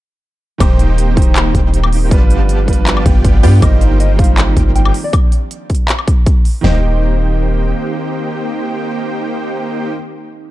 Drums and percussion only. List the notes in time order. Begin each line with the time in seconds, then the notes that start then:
0.60 kick, closed hi-hat, high woodblock
0.79 closed hi-hat
0.98 closed hi-hat
1.17 kick, closed hi-hat
1.22 closed hi-hat
1.36 clap, closed hi-hat
1.55 kick, closed hi-hat
1.74 closed hi-hat
1.84 high woodblock
1.93 open hi-hat
2.11 kick, closed hi-hat
2.30 closed hi-hat
2.49 closed hi-hat
2.68 kick, closed hi-hat
2.73 closed hi-hat
2.87 clap, closed hi-hat
2.97 high woodblock
3.06 kick, closed hi-hat
3.24 kick, closed hi-hat
3.43 open hi-hat
3.62 kick, closed hi-hat, high woodblock
3.81 closed hi-hat
4.00 closed hi-hat
4.19 kick, closed hi-hat
4.24 closed hi-hat
4.38 clap, closed hi-hat
4.57 kick, closed hi-hat
4.76 closed hi-hat
4.85 high woodblock
4.94 open hi-hat
5.13 kick, closed hi-hat, high woodblock
5.32 closed hi-hat
5.51 closed hi-hat
5.70 kick, closed hi-hat
5.75 closed hi-hat
5.89 clap, closed hi-hat
5.99 high woodblock
6.08 kick, closed hi-hat
6.26 kick, closed hi-hat
6.45 open hi-hat
6.64 snare, floor tom